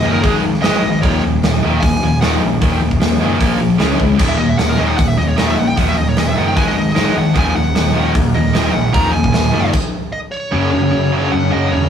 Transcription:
Already playing: D#5
0.03 F#1 D#2 A#2 D#3
0.12 A#4
0.22 G#1 G#2 D#3 G#3 G#4, kick, open hi-hat
0.43 G#1 G#2 D#3
0.54 snare
0.62 G#1 G#2 D#3 G#3 D#5, snare, open hi-hat
0.83 G#1 G#2 D#3
1.02 D#1 D#2 A#2 D#3 C#5, kick, open hi-hat
1.23 D#1 D#2 A#2
1.42 D#1 D#2 A#2, snare, open hi-hat
1.63 D#1 D#2 A#2 D#3
1.81 D#1 D#2 A#2 G#5, kick, open hi-hat
2.01 D#1 D#2 A#2
2.21 D#1 D#2 A#2 D#3 F#5, snare, open hi-hat
2.41 A#1 D#2 A#2
2.61 D#1 D#2 A#2 D#3, kick, open hi-hat
2.80 D#1 D#2 A#2
2.91 kick
3.00 D#1 D#2 A#2, snare, open hi-hat
3.20 F#1 D#2 A#2 D#3
3.40 A#1 A#2 F3 A#3, kick, open hi-hat
3.60 A#1 A#2 F3
3.79 C#2 C#3 G#3 C#4, snare, open hi-hat
3.99 C#2 C#3 G#3, kick
4.19 D#1 D#2 A#2 D#3 F#3 A#3 F#4 A#4, kick, crash
4.28 E5
4.37 D#1 D#2 A#2 D#5
4.49 E5
4.58 D#1 D#2 A#2 F#5, snare, open hi-hat
4.69 A#4
4.77 D#1 D#2 A#2 D#3 D#5
4.87 F#5
4.98 D#1 D#2 A#2 F#5, kick, open hi-hat
5.08 E5
5.18 D#1 D#2 A#2 D#5
5.28 C#5
5.38 D#1 D#2 A#2 D#3 D#5, snare, open hi-hat
5.47 E5
5.59 A#1 D#2 A#2 F#5
5.68 G5
5.77 D#1 D#2 A#2 D#3 F#5, kick, open hi-hat
5.89 E5
5.97 D#1 D#2 A#2 D#5
6.09 C#5
6.17 D#1 D#2 A#2 D#5, snare, open hi-hat
6.28 E5
6.36 F#1 D#2 A#2 D#3 F#5
6.48 G5
6.55 G#1 G#2 D#3 G#3 D#4 D#5 G#5, kick, open hi-hat
6.68 D#5
6.76 G#1 G#2 D#3 D#5
6.87 snare
6.93 G#1 G#2 D#3 G#3 D#4, snare, open hi-hat
7.16 G#1 G#2 D#3 F#5
7.35 D#1 D#2 A#2 D#3 F#3 A#3 F#4 A#4 G#5, kick, open hi-hat
7.55 D#1 D#2 A#2 F#5
7.75 D#1 D#2 A#2, snare, open hi-hat
7.94 D#1 D#2 A#2 D#3
8.15 D#1 D#2 A#2, kick, open hi-hat
8.35 D#1 D#2 A#2 D#5
8.46 snare
8.54 D#1 D#2 A#2 D#3, snare, open hi-hat
8.73 A#1 D#2 A#2 F#5
8.93 D#1 D#2 A#2 D#3 A#5, kick, open hi-hat
9.13 D#1 D#2 A#2 G#5
9.24 kick
9.33 D#1 D#2 A#2, snare, open hi-hat
9.52 F#1 D#2 A#2 D#3
9.73 kick, crash
10.12 D#5
10.32 C#5
10.50 F#1 F#2 C#3 F#3 A#3 F#4 A#4
10.59 F#2 C#3
10.66 F#2 C#3
10.71 F#1 F#2 C#3 C#5
10.81 F#2 C#3
10.89 F#2 C#3
10.94 F#1 F#2 C#3
11.04 F#2 C#3
11.12 F#2 C#3 F#3
11.20 F#2 C#3
11.27 F#2 C#3
11.32 F#1 F#2 C#3 F#5
11.43 F#2 C#3
11.50 F#1 F#2 C#3 F#3 D#5
11.57 F#2 C#3
11.64 F#2 C#3
11.72 E1 F#2 C#3 C#5
11.79 F#2 C#3

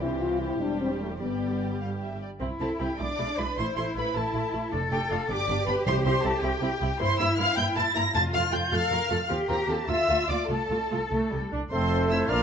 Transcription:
0.01 C2 C3 E3 E4 G4 C5
0.21 F4
0.40 E4
0.60 E1 E2 G3 D4 C5
0.81 C4
1.01 A3
1.20 G1 G2 G3 B3 G4 D5
1.80 F5
2.01 E5
2.21 D5
2.41 C2 C4 E4
2.60 C2 C4 E4 A4 A5
2.79 C2 C4 E4 G4 G5
2.99 B1 G#3 D4 E4 D5 D6
3.19 B1 G#3 E4
3.38 B1 G#3 E4 B4 B5
3.57 A1 A3 E4 C5 C6
3.77 A1 A3 E4 C5 C6
3.96 A1 A3 E4 B4 B5
4.15 A1 A3 E4 A4 A5
4.35 A1 A3 E4
4.54 A1 A3 E4
4.72 F1 F2 A3 D4 A4
4.92 F1 A3 D4 G4 G5
5.11 F1 A3 D4 F4 F5
5.29 G1 B3 D4 G4 D5 D6
5.48 G1 B3 D4
5.67 G1 B3 D4 B4 B5
5.86 C2 C3 C4 E4 C5 C6
6.05 C2 C4 E4 C5 C6
6.24 C2 C4 E4 A4 A5
6.43 C2 C4 E4 G4 G5
6.62 C2 C4 E4
6.81 C2 C4 E4
7.00 G2 A#3 E4 C5 C6
7.19 G2 A#3 E4 E5 E6
7.38 G2 A#3 E4 F5 F6
7.57 G2 A#3 E4 G5 G6
7.76 G2 A#3 E4 A5 A6
7.95 G2 A#3 E4 A#5 A#6
8.14 F2 A3 F4 A5 A6
8.33 F2 A3 F4 F5 F6
8.52 F2 A3 F4 G5 G6
8.71 F2 A3 F4 A4 F5 F6
8.90 F2 A3 F4 A#4
9.10 F2 A3 F4 A4
9.29 D#2 C4 F4 G4
9.49 D#2 C4 F4 A#4 A#5
9.68 D#2 C4 F4 A4 A5
9.88 D2 A#3 F4 E5 E6
10.08 D2 A#3 F4
10.29 D2 A#3 F4 D5 D6
10.49 C2 A3 F4 A4 A5
10.70 C2 A3 F4
10.91 C2 A3 F4
11.11 C2 A3
11.32 C2 G3
11.52 C2 D4
11.71 F1 F2 F3 A3 C4 A4 C5 C6
12.10 E4 E5 E6
12.29 A#1 A#2 A#3 D4 F4 A#4 D5 F5 F6

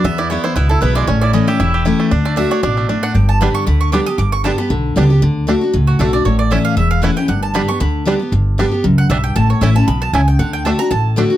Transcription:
0.04 E2 B3 E5
0.18 E4 D5
0.30 E3 G#3 B3 E4 C#5
0.44 B3 E4 C5
0.56 C#2 B2 E4 B4
0.69 E4 A4
0.81 B1 E3 G#3 B3 E4 B4
0.95 G#3 B3 E4 D5
1.07 A1 A2 C#4 C#5
1.21 E4 D5
1.33 E3 A3 C#4 E4 D#5
1.47 C#4 E4 G4 E5
1.60 E1 E2 E4
1.74 G4
1.85 E3 A3 C#4 E4
2.00 A3
2.11 D2 D3 D4
2.25 A3 D5
2.36 D3 A3 D4 F#4 E5
2.51 D4 C#5
2.63 A1 B2 D4 D5
2.77 A3
2.89 A2 D4
3.03 D4 F#5
3.15 G1 G2 G5
3.29 A5
3.41 D3 G3 B3 D4 G4 B5
3.55 C#6
3.67 D2 D3 B5
3.81 C#6
3.92 D3 G3 B3 D4 G4 D6
4.06 B3 G4 D#6
4.18 G1 G2 D6
4.32 C#6
4.44 D3 G3 B3 D4 G4 A5
4.58 B3 G4 B5
4.70 B1 D3
4.96 C#2 D3 G3 B3 D4 G4
5.10 B3 G4
5.22 D2 D3
5.47 D3 A3 D4 F#4
5.61 D4 F#4
5.73 C#2 A2
5.87 F#4
5.99 B1 D3 A3 D4 F#4 A4
6.13 D4 F#4 D5
6.25 A1 A2 C#5
6.39 D5
6.51 E3 A3 C#4 E4 E5
6.65 F5
6.77 E1 E2 E5
6.91 F5
7.02 E3 A3 C#4 E4 F#5
7.16 C#4 E4 G5
7.28 G1 G2 F#5
7.43 A5
7.54 D3 G3 B3 D4 G4 B5
7.68 B3 G4 C#6
7.80 D2 D3 B5
8.05 D3 G3 B3 D4 G4
8.19 B3 G4
8.32 G1 G2
8.58 D3 G3 B3 D4 G4
8.71 B3 G4
8.84 C#2 F#2
8.98 F#5
9.10 B1 G2 G3 B3 D4 E5
9.24 G5
9.36 A1 A2 A5
9.50 C#5
9.61 A1 E3 A3 C#4 E4 E5
9.75 C#4 E4 A5
9.88 B1 B2 B5
10.02 A5
10.13 C#2 C#3 A3 C#4 E4 G#5
10.28 G5
10.39 D2 D3 F#5
10.53 G5
10.65 D3 A3 D4 F#4 A5
10.79 D4 F#4 A#5
10.91 A1 A2 A5
11.16 D3 A3 D4 F#4
11.30 D4 F#4

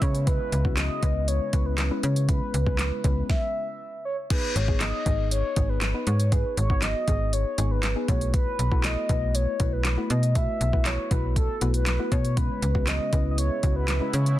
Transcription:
Already playing: C#3 G#3 B3 C#4 E4 B4
0.02 C#3 C#5, kick, closed hi-hat
0.15 closed hi-hat
0.27 G#3 B3 C#4 E4 B4, kick, closed hi-hat
0.52 C#2, closed hi-hat
0.65 G#3 B3 C#4 E4 F#4, kick
0.77 D#5, snare, clap, closed hi-hat
1.02 C#2 G#3 B3 C#4 E4 B4, kick, closed hi-hat
1.28 C#5, closed hi-hat
1.53 C#2 G#3 B3 C#4 E4 B4, kick, closed hi-hat
1.66 B4
1.78 snare, clap, closed hi-hat
1.91 G#3 B3 C#4 E4 B4
2.03 C#3 C#5, closed hi-hat
2.16 closed hi-hat
2.28 G#3 B3 C#4 E4 B4, kick, closed hi-hat
2.54 C#2, closed hi-hat
2.66 G#3 B3 C#4 E4 B4, kick
2.79 snare, clap, closed hi-hat
3.04 C#2 G#3 B3 C#4 E4 B4, kick, closed hi-hat
3.30 E5, kick, snare
4.05 C#5
4.30 B3 D#4 G#4 B4, kick, closed hi-hat, crash
4.56 G#1 C#5, closed hi-hat
4.68 B3 D#4 G#4, kick
4.80 D#5, snare, clap, closed hi-hat
5.06 G#1 B3 D#4 G#4, kick, closed hi-hat
5.31 C#5, closed hi-hat
5.56 G#1 B3 D#4 G#4, kick, closed hi-hat
5.69 B4
5.81 snare, clap, closed hi-hat
5.94 B3 D#4 B4
6.07 G#2 C#5, closed hi-hat
6.20 closed hi-hat
6.32 B3 D#4 G#4 B4, kick, closed hi-hat
6.57 G#1 C#5, closed hi-hat
6.70 B3 D#4 F#4, kick
6.82 D#5, snare, clap, closed hi-hat
7.07 G#1 B3 D#4 G#4, kick, closed hi-hat
7.33 C#5, closed hi-hat
7.58 G#1 B3 D#4 G#4, closed hi-hat
7.71 B4
7.83 snare, clap, closed hi-hat
7.96 B3 D#4 G#4
8.08 B1 A3 B3 E4 F#4 B4 C#5, kick, closed hi-hat
8.21 closed hi-hat
8.34 B4, kick, closed hi-hat
8.59 B1, closed hi-hat
8.71 A3 B3 E4 F#4 A4, kick
8.84 D#5, snare, clap, closed hi-hat
9.09 B1 A3 B3 E4 F#4 B4, kick, closed hi-hat
9.35 C#5, closed hi-hat
9.60 B1 A3 B3 E4 F#4 B4, kick, closed hi-hat
9.73 B4
9.85 snare, clap, closed hi-hat
9.97 A3 B3 E4 F#4 B4
10.10 B2 D#5, closed hi-hat
10.23 closed hi-hat
10.35 A3 B3 E4 F#4 B4 E5, kick, closed hi-hat
10.61 B1, closed hi-hat
10.73 A3 B3 E4 F#4 B4, kick
10.85 C#5, snare, clap, closed hi-hat
11.11 B1 A3 B3 E4 F#4 B4, kick, closed hi-hat
11.36 A4, kick, closed hi-hat
11.61 B1 A3 B3 E4 F#4 B4, closed hi-hat
11.74 B4, closed hi-hat
11.86 snare, clap, closed hi-hat
11.99 A3 B3 E4 F#4 B4
12.12 B2 C#5, kick, closed hi-hat
12.25 closed hi-hat
12.37 C#3 G#3 B3 C#4 E4 B4, kick, closed hi-hat
12.62 C#2, closed hi-hat
12.75 G#3 B3 C#4 E4 F#4, kick
12.87 D#5, snare, clap, closed hi-hat
13.12 C#2 G#3 B3 C#4 E4 B4, kick, closed hi-hat
13.31 D#5
13.38 C#5, closed hi-hat
13.63 C#2 G#3 B3 C#4 E4 F#4, kick, closed hi-hat
13.76 B4
13.88 snare, clap, closed hi-hat
14.01 G#3 B3 C#4 E4 B4
14.13 C#3 C#5, closed hi-hat
14.26 closed hi-hat

